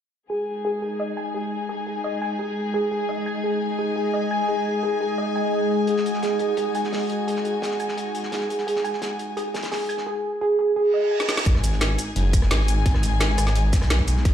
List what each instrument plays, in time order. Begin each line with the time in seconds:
0.30 ambient pad G#3, string section G#3 D#4 G#4 G#5, synth pluck G#4
0.47 ambient pad G#4
0.65 synth pluck G#4
0.82 synth pluck G#4
1.00 synth pluck D#5
1.17 ambient pad D#5, synth pluck G#5
1.34 synth pluck G#4
1.60 ambient pad D#6
1.69 synth pluck G#4
1.87 synth pluck G#4
2.04 synth pluck D#5
2.22 synth pluck G#5
2.39 synth pluck G#4
2.74 synth pluck G#4
2.91 synth pluck G#4
3.09 synth pluck D#5
3.26 synth pluck G#5
3.44 synth pluck G#4
3.79 synth pluck G#4
3.96 synth pluck G#4
4.14 synth pluck D#5
4.31 synth pluck G#5
4.48 synth pluck G#4
4.83 synth pluck G#4
5.01 synth pluck G#4
5.18 synth pluck D#5
5.36 synth pluck G#5
5.53 synth pluck G#4
5.87 string section F#4, synth pluck G#4, closed hi-hat
5.97 snare
6.06 closed hi-hat
6.14 snare
6.23 synth pluck G#4, snare, closed hi-hat
6.39 synth pluck G#4, closed hi-hat
6.57 synth pluck G#4, closed hi-hat
6.75 synth pluck G#5, closed hi-hat
6.84 snare
6.93 synth pluck G#4, snare, open hi-hat
7.09 closed hi-hat
7.27 synth pluck G#4, closed hi-hat
7.36 snare
7.45 synth pluck G#4, closed hi-hat
7.62 synth pluck G#4, snare, closed hi-hat
7.71 snare
7.80 synth pluck G#5, closed hi-hat
7.88 snare
7.97 synth pluck G#4, closed hi-hat
8.15 closed hi-hat
8.23 snare
8.32 synth pluck G#4, snare, closed hi-hat
8.40 snare
8.50 synth pluck G#4, closed hi-hat
8.58 snare
8.67 synth pluck G#4, closed hi-hat
8.76 snare
8.84 synth pluck G#5, closed hi-hat
8.93 snare
9.02 synth pluck G#4, snare, closed hi-hat
9.19 closed hi-hat
9.37 synth pluck G#4, closed hi-hat
9.54 synth pluck G#4, snare, closed hi-hat
9.63 snare, closed hi-hat
9.72 synth pluck G#4, snare, open hi-hat
9.89 synth pluck G#5, closed hi-hat
9.98 snare
10.07 synth pluck G#4
10.41 synth pluck G#4
10.59 synth pluck G#4
10.76 synth pluck G#4, reverse cymbal
10.94 synth pluck D#5
11.11 synth pluck G#5
11.20 snare
11.29 snare
11.37 snare
11.46 detuned saw bass G#1, string section G#3 D#4 G#4 G#5, kick, closed hi-hat
11.55 cross-stick, snare
11.64 closed hi-hat, shaker
11.72 snare
11.80 snare, closed hi-hat
11.99 closed hi-hat, shaker
12.16 detuned saw bass F#1, closed hi-hat
12.33 kick, closed hi-hat, shaker
12.42 cross-stick, snare
12.51 detuned saw bass G#1, snare, closed hi-hat, open hi-hat
12.68 closed hi-hat, shaker
12.86 detuned saw bass G#1, kick, closed hi-hat
12.94 cross-stick, snare
13.03 closed hi-hat, shaker
13.20 snare, closed hi-hat
13.29 snare
13.38 detuned saw bass G#1, cross-stick, closed hi-hat, shaker
13.46 snare
13.55 closed hi-hat
13.73 detuned saw bass B1, kick, snare, closed hi-hat, shaker
13.82 cross-stick, snare, closed hi-hat
13.90 snare, closed hi-hat
13.99 kick, snare
14.08 detuned saw bass B1, closed hi-hat, shaker
14.17 snare
14.25 detuned saw bass G#1, string section D#5, kick, closed hi-hat